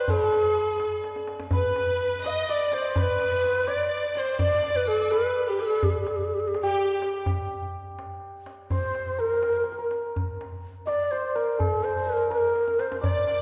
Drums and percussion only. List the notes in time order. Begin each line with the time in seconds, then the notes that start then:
0.08 tombak dum
0.32 tombak tek
0.57 tombak ka
0.80 tombak tek
1.04 tombak tek
1.16 tombak ka
1.27 tombak tek
1.40 tombak ka
1.51 tombak dum
1.76 tombak tek
2.01 tombak ka
2.24 tombak tek
2.72 tombak tek
2.96 tombak dum
3.20 tombak tek
3.44 tombak ka
3.68 tombak tek
4.15 tombak tek
4.39 tombak dum
4.64 tombak tek
4.87 tombak ka
5.11 tombak tek
5.59 tombak tek
5.83 tombak dum
6.07 tombak tek
6.54 tombak tek
7.02 tombak tek
7.26 tombak dum
7.99 tombak tek
8.46 tombak tek
8.70 tombak dum
8.95 tombak tek
9.43 tombak tek
9.91 tombak tek
10.16 tombak dum
10.41 tombak tek
10.88 tombak tek
11.36 tombak tek
11.60 tombak dum
11.84 tombak tek
12.31 tombak tek
12.56 tombak tek
12.68 tombak ka
12.79 tombak tek
12.92 tombak ka
13.04 tombak dum
13.27 tombak tek